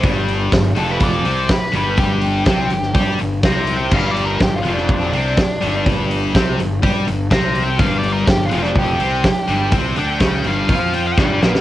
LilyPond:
<<
  \new Staff \with { instrumentName = "Lead electric guitar" } { \time 4/4 \key c \lydian \tempo 4 = 124 r4. a'16 b'16 d''4 b'8 b'8 | g'2 r4 \tuplet 3/2 { bes''4 g''8 } | \tuplet 3/2 { f''8 d''8 bes'8 g'8 f'8 d'8 } d'2 | r2. \tuplet 3/2 { bes''4 g''8 } |
\tuplet 3/2 { f''8 d''8 bes'8 g'8 f'8 d'8 } g'2 | r8 g''4 f''4 g''16 g''16 <g g''>8 b8 | }
  \new Staff \with { instrumentName = "Distorted electric guitar" } { \clef bass \time 4/4 \key c \lydian <g, g>4 g,8 <f, f>4 <c c'>8 r8 <g, g>8~ | <g, g>4 <c c'>8 g,8 <g g'>8 g,8 <c c'>4 | <g, g>4 g,8 <f, f>4 <c c'>8 r8 <g, g>8~ | <g, g>4 <c c'>8 g,8 <g g'>8 g,8 <c c'>4 |
<g, g>4 g,8 <f, f>4 <c c'>8 r8 <g, g>8 | <c c'>8 <d d'>8 <cis cis'>8 <g, g>8 <f f'>4 <g, g>8 <bes, bes>8 | }
  \new Staff \with { instrumentName = "Distorted electric guitar" } { \clef bass \time 4/4 \key c \lydian <g, g>4 g,8 <f, f>4 <c c'>8 r8 <g, g>8~ | <g, g>4 <c c'>8 g,8 <g g'>8 g,8 <c c'>4 | <g, g>4 g,8 <f, f>4 <c c'>8 r8 <g, g>8~ | <g, g>4 <c c'>8 g,8 <g g'>8 g,8 <c c'>4 |
<g, g>4 g,8 <f, f>4 <c c'>8 r8 <g, g>8 | <c c'>8 <d d'>8 <cis cis'>8 <g, g>8 <f f'>4 <g, g>8 <bes, bes>8 | }
  \new Staff \with { instrumentName = "Distorted electric guitar" } { \clef bass \time 4/4 \key c \lydian <g, g>4 g,8 <f, f>4 <c c'>8 r8 <g, g>8~ | <g, g>4 <c c'>8 g,8 <g g'>8 g,8 <c c'>4 | <g, g>4 g,8 <f, f>4 <c c'>8 r8 <g, g>8~ | <g, g>4 <c c'>8 g,8 <g g'>8 g,8 <c c'>4 |
<g, g>4 g,8 <f, f>4 <c c'>8 r8 <g, g>8 | <c c'>8 <d d'>8 <cis cis'>8 <g, g>8 <f f'>4 <g, g>8 <bes, bes>8 | }
  \new Staff \with { instrumentName = "Fingered electric bass" } { \clef bass \time 4/4 \key c \lydian g,,4 g,,8 f,,4 c,8 r8 g,,8~ | g,,4 c,8 g,,8 g,8 g,,8 c,4 | g,,4 g,,8 f,,4 c,8 r8 g,,8~ | g,,4 c,8 g,,8 g,8 g,,8 c,4 |
g,,4 g,,8 f,,4 c,8 r8 g,,8 | c,8 d,8 cis,8 g,,8 f,4 g,,8 bes,,8 | }
  \new DrumStaff \with { instrumentName = "Drums" } \drummode { \time 4/4 <hho bd>8 hho8 <hho bd sn>8 hho8 <hho bd>8 hho8 <hho bd sn>8 hho8 | <hho bd>8 hho8 <hho bd sn>8 hho16 sn16 <hho bd>8 hho8 <hho bd sn>8 hho8 | <cymc bd>8 hho8 <hho bd sn>8 hho16 sn16 <hho bd>8 hho8 <hho bd sn>8 hho8 | <hho bd>8 hho8 <hho bd sn>8 hho8 <hho bd>8 hho8 <hho bd sn>8 hho8 |
<hho bd>8 hho8 <hho bd sn>8 hho16 sn16 <hho bd>8 hho8 <hho bd sn>8 hho8 | <hho bd>8 hho8 <hho bd sn>8 hho8 <hho bd>8 hho8 <bd sn>8 sn16 sn16 | }
>>